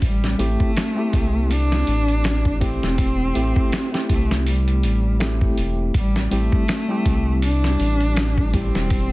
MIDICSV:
0, 0, Header, 1, 5, 480
1, 0, Start_track
1, 0, Key_signature, 0, "minor"
1, 0, Tempo, 740741
1, 13, Time_signature, 4, 2, 24, 8
1, 5911, End_track
2, 0, Start_track
2, 0, Title_t, "Tine electric piano"
2, 0, Program_c, 0, 4
2, 249, Note_on_c, 0, 57, 87
2, 252, Note_on_c, 0, 60, 88
2, 255, Note_on_c, 0, 64, 83
2, 258, Note_on_c, 0, 67, 107
2, 455, Note_off_c, 0, 57, 0
2, 457, Note_off_c, 0, 60, 0
2, 458, Note_off_c, 0, 64, 0
2, 460, Note_off_c, 0, 67, 0
2, 617, Note_on_c, 0, 57, 97
2, 623, Note_on_c, 0, 60, 89
2, 630, Note_on_c, 0, 64, 90
2, 636, Note_on_c, 0, 67, 99
2, 1662, Note_off_c, 0, 57, 0
2, 1665, Note_off_c, 0, 60, 0
2, 1669, Note_off_c, 0, 64, 0
2, 1672, Note_off_c, 0, 67, 0
2, 1686, Note_on_c, 0, 57, 73
2, 1689, Note_on_c, 0, 60, 76
2, 1693, Note_on_c, 0, 64, 68
2, 1696, Note_on_c, 0, 67, 88
2, 2144, Note_off_c, 0, 57, 0
2, 2146, Note_off_c, 0, 60, 0
2, 2148, Note_off_c, 0, 64, 0
2, 2149, Note_off_c, 0, 67, 0
2, 2168, Note_on_c, 0, 57, 94
2, 2171, Note_on_c, 0, 60, 84
2, 2175, Note_on_c, 0, 64, 84
2, 2177, Note_on_c, 0, 67, 109
2, 2514, Note_off_c, 0, 57, 0
2, 2515, Note_off_c, 0, 60, 0
2, 2517, Note_off_c, 0, 64, 0
2, 2518, Note_off_c, 0, 67, 0
2, 2538, Note_on_c, 0, 57, 80
2, 2544, Note_on_c, 0, 60, 77
2, 2550, Note_on_c, 0, 64, 79
2, 2557, Note_on_c, 0, 67, 91
2, 3343, Note_off_c, 0, 57, 0
2, 3346, Note_off_c, 0, 60, 0
2, 3349, Note_off_c, 0, 64, 0
2, 3352, Note_off_c, 0, 67, 0
2, 3369, Note_on_c, 0, 57, 97
2, 3371, Note_on_c, 0, 60, 92
2, 3376, Note_on_c, 0, 64, 89
2, 3379, Note_on_c, 0, 67, 105
2, 3838, Note_off_c, 0, 57, 0
2, 3840, Note_off_c, 0, 60, 0
2, 3842, Note_off_c, 0, 64, 0
2, 3844, Note_off_c, 0, 67, 0
2, 4087, Note_on_c, 0, 55, 93
2, 4090, Note_on_c, 0, 60, 86
2, 4093, Note_on_c, 0, 64, 89
2, 4098, Note_on_c, 0, 67, 99
2, 4294, Note_off_c, 0, 55, 0
2, 4296, Note_off_c, 0, 60, 0
2, 4297, Note_off_c, 0, 64, 0
2, 4300, Note_off_c, 0, 67, 0
2, 4458, Note_on_c, 0, 55, 95
2, 4464, Note_on_c, 0, 60, 84
2, 4471, Note_on_c, 0, 64, 88
2, 4477, Note_on_c, 0, 67, 100
2, 5503, Note_off_c, 0, 55, 0
2, 5506, Note_off_c, 0, 60, 0
2, 5509, Note_off_c, 0, 64, 0
2, 5512, Note_off_c, 0, 67, 0
2, 5528, Note_on_c, 0, 55, 80
2, 5532, Note_on_c, 0, 60, 74
2, 5534, Note_on_c, 0, 64, 73
2, 5538, Note_on_c, 0, 67, 91
2, 5911, Note_off_c, 0, 55, 0
2, 5911, Note_off_c, 0, 60, 0
2, 5911, Note_off_c, 0, 64, 0
2, 5911, Note_off_c, 0, 67, 0
2, 5911, End_track
3, 0, Start_track
3, 0, Title_t, "Cello"
3, 0, Program_c, 1, 42
3, 18, Note_on_c, 1, 55, 83
3, 260, Note_on_c, 1, 57, 97
3, 270, Note_off_c, 1, 55, 0
3, 980, Note_on_c, 1, 62, 114
3, 990, Note_off_c, 1, 57, 0
3, 1695, Note_off_c, 1, 62, 0
3, 1699, Note_on_c, 1, 60, 111
3, 2630, Note_off_c, 1, 60, 0
3, 2662, Note_on_c, 1, 57, 92
3, 2881, Note_off_c, 1, 57, 0
3, 2902, Note_on_c, 1, 55, 76
3, 3592, Note_off_c, 1, 55, 0
3, 3867, Note_on_c, 1, 55, 92
3, 4084, Note_off_c, 1, 55, 0
3, 4104, Note_on_c, 1, 57, 107
3, 4793, Note_off_c, 1, 57, 0
3, 4823, Note_on_c, 1, 62, 110
3, 5540, Note_on_c, 1, 60, 111
3, 5550, Note_off_c, 1, 62, 0
3, 5911, Note_off_c, 1, 60, 0
3, 5911, End_track
4, 0, Start_track
4, 0, Title_t, "Analog synth bass"
4, 0, Program_c, 2, 38
4, 15, Note_on_c, 2, 33, 95
4, 229, Note_off_c, 2, 33, 0
4, 253, Note_on_c, 2, 33, 100
4, 372, Note_off_c, 2, 33, 0
4, 734, Note_on_c, 2, 36, 87
4, 1194, Note_off_c, 2, 36, 0
4, 1216, Note_on_c, 2, 33, 102
4, 1804, Note_off_c, 2, 33, 0
4, 1832, Note_on_c, 2, 28, 101
4, 2155, Note_off_c, 2, 28, 0
4, 2175, Note_on_c, 2, 33, 100
4, 2293, Note_off_c, 2, 33, 0
4, 2654, Note_on_c, 2, 36, 90
4, 3134, Note_on_c, 2, 33, 84
4, 3144, Note_off_c, 2, 36, 0
4, 3593, Note_off_c, 2, 33, 0
4, 3615, Note_on_c, 2, 28, 89
4, 3829, Note_off_c, 2, 28, 0
4, 3854, Note_on_c, 2, 33, 98
4, 4069, Note_off_c, 2, 33, 0
4, 4094, Note_on_c, 2, 33, 99
4, 4213, Note_off_c, 2, 33, 0
4, 4574, Note_on_c, 2, 36, 94
4, 5034, Note_off_c, 2, 36, 0
4, 5053, Note_on_c, 2, 33, 102
4, 5643, Note_off_c, 2, 33, 0
4, 5671, Note_on_c, 2, 28, 106
4, 5911, Note_off_c, 2, 28, 0
4, 5911, End_track
5, 0, Start_track
5, 0, Title_t, "Drums"
5, 13, Note_on_c, 9, 36, 106
5, 13, Note_on_c, 9, 46, 93
5, 78, Note_off_c, 9, 36, 0
5, 78, Note_off_c, 9, 46, 0
5, 155, Note_on_c, 9, 38, 38
5, 219, Note_off_c, 9, 38, 0
5, 255, Note_on_c, 9, 46, 68
5, 320, Note_off_c, 9, 46, 0
5, 389, Note_on_c, 9, 36, 85
5, 454, Note_off_c, 9, 36, 0
5, 494, Note_on_c, 9, 82, 69
5, 496, Note_on_c, 9, 46, 83
5, 501, Note_on_c, 9, 38, 109
5, 559, Note_off_c, 9, 82, 0
5, 561, Note_off_c, 9, 46, 0
5, 565, Note_off_c, 9, 38, 0
5, 733, Note_on_c, 9, 36, 95
5, 735, Note_on_c, 9, 46, 69
5, 798, Note_off_c, 9, 36, 0
5, 800, Note_off_c, 9, 46, 0
5, 976, Note_on_c, 9, 46, 80
5, 1041, Note_off_c, 9, 46, 0
5, 1115, Note_on_c, 9, 38, 47
5, 1180, Note_off_c, 9, 38, 0
5, 1214, Note_on_c, 9, 46, 68
5, 1278, Note_off_c, 9, 46, 0
5, 1350, Note_on_c, 9, 42, 44
5, 1415, Note_off_c, 9, 42, 0
5, 1452, Note_on_c, 9, 82, 68
5, 1453, Note_on_c, 9, 46, 81
5, 1457, Note_on_c, 9, 38, 112
5, 1517, Note_off_c, 9, 82, 0
5, 1518, Note_off_c, 9, 46, 0
5, 1522, Note_off_c, 9, 38, 0
5, 1589, Note_on_c, 9, 36, 89
5, 1654, Note_off_c, 9, 36, 0
5, 1693, Note_on_c, 9, 36, 90
5, 1694, Note_on_c, 9, 46, 66
5, 1758, Note_off_c, 9, 36, 0
5, 1758, Note_off_c, 9, 46, 0
5, 1835, Note_on_c, 9, 38, 36
5, 1900, Note_off_c, 9, 38, 0
5, 1932, Note_on_c, 9, 46, 93
5, 1933, Note_on_c, 9, 36, 108
5, 1997, Note_off_c, 9, 36, 0
5, 1997, Note_off_c, 9, 46, 0
5, 2173, Note_on_c, 9, 46, 64
5, 2238, Note_off_c, 9, 46, 0
5, 2308, Note_on_c, 9, 36, 94
5, 2373, Note_off_c, 9, 36, 0
5, 2413, Note_on_c, 9, 46, 85
5, 2416, Note_on_c, 9, 82, 74
5, 2418, Note_on_c, 9, 38, 111
5, 2478, Note_off_c, 9, 46, 0
5, 2481, Note_off_c, 9, 82, 0
5, 2482, Note_off_c, 9, 38, 0
5, 2555, Note_on_c, 9, 38, 40
5, 2620, Note_off_c, 9, 38, 0
5, 2653, Note_on_c, 9, 36, 93
5, 2655, Note_on_c, 9, 46, 67
5, 2718, Note_off_c, 9, 36, 0
5, 2719, Note_off_c, 9, 46, 0
5, 2794, Note_on_c, 9, 38, 56
5, 2859, Note_off_c, 9, 38, 0
5, 2893, Note_on_c, 9, 46, 88
5, 2958, Note_off_c, 9, 46, 0
5, 3031, Note_on_c, 9, 42, 42
5, 3095, Note_off_c, 9, 42, 0
5, 3132, Note_on_c, 9, 46, 68
5, 3197, Note_off_c, 9, 46, 0
5, 3372, Note_on_c, 9, 46, 77
5, 3376, Note_on_c, 9, 82, 80
5, 3377, Note_on_c, 9, 38, 115
5, 3437, Note_off_c, 9, 46, 0
5, 3440, Note_off_c, 9, 82, 0
5, 3441, Note_off_c, 9, 38, 0
5, 3508, Note_on_c, 9, 36, 99
5, 3573, Note_off_c, 9, 36, 0
5, 3613, Note_on_c, 9, 46, 68
5, 3678, Note_off_c, 9, 46, 0
5, 3851, Note_on_c, 9, 46, 94
5, 3852, Note_on_c, 9, 36, 109
5, 3916, Note_off_c, 9, 46, 0
5, 3917, Note_off_c, 9, 36, 0
5, 3991, Note_on_c, 9, 38, 37
5, 4055, Note_off_c, 9, 38, 0
5, 4092, Note_on_c, 9, 46, 68
5, 4156, Note_off_c, 9, 46, 0
5, 4227, Note_on_c, 9, 36, 94
5, 4292, Note_off_c, 9, 36, 0
5, 4331, Note_on_c, 9, 46, 82
5, 4331, Note_on_c, 9, 82, 94
5, 4335, Note_on_c, 9, 38, 112
5, 4396, Note_off_c, 9, 46, 0
5, 4396, Note_off_c, 9, 82, 0
5, 4400, Note_off_c, 9, 38, 0
5, 4572, Note_on_c, 9, 36, 94
5, 4573, Note_on_c, 9, 46, 72
5, 4637, Note_off_c, 9, 36, 0
5, 4638, Note_off_c, 9, 46, 0
5, 4810, Note_on_c, 9, 46, 89
5, 4875, Note_off_c, 9, 46, 0
5, 4952, Note_on_c, 9, 38, 47
5, 5017, Note_off_c, 9, 38, 0
5, 5052, Note_on_c, 9, 46, 63
5, 5116, Note_off_c, 9, 46, 0
5, 5186, Note_on_c, 9, 42, 41
5, 5251, Note_off_c, 9, 42, 0
5, 5290, Note_on_c, 9, 46, 86
5, 5295, Note_on_c, 9, 38, 106
5, 5297, Note_on_c, 9, 82, 74
5, 5355, Note_off_c, 9, 46, 0
5, 5360, Note_off_c, 9, 38, 0
5, 5362, Note_off_c, 9, 82, 0
5, 5428, Note_on_c, 9, 36, 91
5, 5492, Note_off_c, 9, 36, 0
5, 5531, Note_on_c, 9, 46, 69
5, 5532, Note_on_c, 9, 36, 96
5, 5596, Note_off_c, 9, 46, 0
5, 5597, Note_off_c, 9, 36, 0
5, 5671, Note_on_c, 9, 38, 37
5, 5736, Note_off_c, 9, 38, 0
5, 5769, Note_on_c, 9, 46, 87
5, 5771, Note_on_c, 9, 36, 115
5, 5834, Note_off_c, 9, 46, 0
5, 5836, Note_off_c, 9, 36, 0
5, 5911, End_track
0, 0, End_of_file